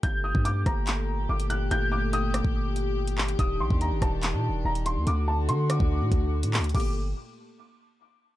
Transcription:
<<
  \new Staff \with { instrumentName = "Upright piano" } { \time 4/4 \key g \minor \tempo 4 = 143 g'''8 ees'''8 d'''8 bes''4. d'''8 fis'''8 | g'''8 d'''8 ees'''8 d'''2~ d'''8 | ees'''8 c'''8 bes''8 a''4. bes''8 c'''8 | d'''8 a''8 c'''8 d'''2~ d'''8 |
d'''8 r2. r8 | }
  \new Staff \with { instrumentName = "String section" } { \time 4/4 \key g \minor << { g'1~ | g'1~ | g'1 | fis'1 |
<bes, a g'>8 r2. r8 | } \\ { <bes, a>1~ | <bes, a>1 | <ees d'>1 | <d a>1 |
r1 | } >> }
  \new Staff \with { instrumentName = "808-style bass" } { \clef bass \time 4/4 \key g \minor g,,8. g,8. g,,4. g,,4 | g,,4.~ g,,16 g,,2~ g,,16 | ees,,8 bes,,16 ees,8 g,,16 ees,,8. bes,16. ees,,16. ees,,8. ees,16 | d,4 d8. d,8 a,16 d,8. a,16. d,16. |
g,,4 r2. | }
  \new DrumStaff \with { instrumentName = "Drums" } \drummode { \time 4/4 <hh bd>8. bd16 hh8 <hh bd ss>8 <hc hh>4 r16 hh16 hh8 | hh4 hh8 <hh ss>16 bd16 r8 hh8 r16 hh16 hc16 hh16 | <hh bd>8. bd16 hh8 <hh bd ss>8 <hc hh>4 r16 hh16 hh8 | hh4 hh8 <hh ss>16 bd16 r8 <hh bd>8 r16 hh16 <hc hho>16 hh32 hh32 |
<cymc hh bd>32 hh8. r32 r4 r4 r4 | }
>>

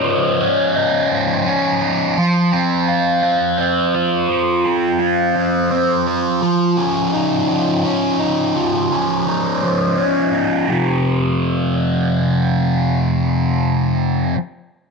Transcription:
\new Staff \with { instrumentName = "Distorted electric guitar" } { \time 6/8 \key des \lydian \tempo 4. = 56 <f des' ees'>8 des'8 ees'8 f8 des'8 ees'8 | f8 c'8 f'8 f8 c'8 f'8 | f8 c'8 f'8 f8 c'8 f'8 | f8 des'8 ees'8 f8 des'8 ees'8 |
f8 des'8 ees'8 f8 des'8 ees'8 | <f, c f>2.~ | <f, c f>2. | }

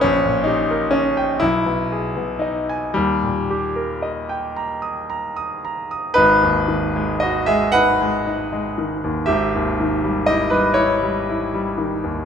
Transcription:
<<
  \new Staff \with { instrumentName = "Grand piano" } { \time 12/8 \key gis \minor \tempo 4. = 39 cis'8 dis'8 cis'8 e'4 dis'8 g2~ g8 r8 | <dis' b'>4 <fis' dis''>16 <gis' e''>16 <b' fis''>4. <g' e''>4 <g' dis''>16 <dis' b'>16 <e' cis''>4. | }
  \new Staff \with { instrumentName = "Grand piano" } { \clef bass \time 12/8 \key gis \minor ais,,16 ais,16 g'16 ais'16 dis''16 g''16 b,,16 b,16 gis'16 b,16 dis''16 gis''16 dis,16 ais,16 g'16 ais'16 dis''16 g''16 ais''16 dis'''16 ais''16 dis'''16 ais''16 dis'''16 | gis,,16 dis,16 dis16 gis16 dis'16 gis16 dis'16 gis16 dis'16 gis16 dis16 dis,16 gis,,16 dis,16 dis16 g16 e'16 g8 g16 e'16 g16 dis16 dis,16 | }
>>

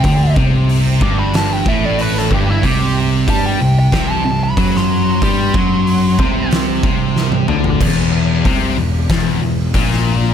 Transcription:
<<
  \new Staff \with { instrumentName = "Lead electric guitar" } { \time 4/4 \key c \lydian \tempo 4 = 93 g''8 r4 d'''16 b''16 a''16 g''16 e''16 d''16 b'16 a'16 g'16 e'16 | g'8 r8 a''16 g''8 g''8 a''8 b''8 c'''8. | c'''2 r2 | r1 | }
  \new Staff \with { instrumentName = "Distorted electric guitar" } { \clef bass \time 4/4 \key c \lydian d8 c4 g,4 a,4 g,8 | c4 g8 c8 c8 c8 fis4 | g8 fis4 c4 c4 d8 | e,4 c8 e,8 e,8 e,8 ais,4 | }
  \new Staff \with { instrumentName = "Distorted electric guitar" } { \clef bass \time 4/4 \key c \lydian d8 c4 g,4 a,4 g,8 | c4 g8 c8 c8 c8 fis4 | g8 fis4 c4 c4 d8 | r1 | }
  \new Staff \with { instrumentName = "Distorted electric guitar" } { \clef bass \time 4/4 \key c \lydian d8 c4 g,4 a,4 g,8 | c4 g8 c8 c8 c8 fis4 | g8 fis4 c4 c4 d8 | e,4 c8 e,8 e,8 e,8 ais,4 | }
  \new Staff \with { instrumentName = "Picked electric bass" } { \clef bass \time 4/4 \key c \lydian d,8 c,4 g,,4 a,,4 g,,8 | c,4 g,8 c,8 c,8 c,8 fis,4 | g,8 fis,4 c,4 c,4 d,8 | e,,4 c,8 e,,8 e,,8 e,,8 ais,,4 | }
  \new DrumStaff \with { instrumentName = "Drums" } \drummode { \time 4/4 <hho bd>8 bd8 hho8 bd8 <hho sn>8 bd8 hho16 sn16 bd8 | <hho bd>4 <hho bd>4 <hho bd sn>4 <hho bd>16 sn8. | <hho bd>8 bd8 hho8 bd8 <hho sn>8 bd8 sn16 tommh16 toml16 tomfh16 | <cymc bd>4 <hho bd>4 <hho bd sn>4 <hho bd>16 sn8. | }
>>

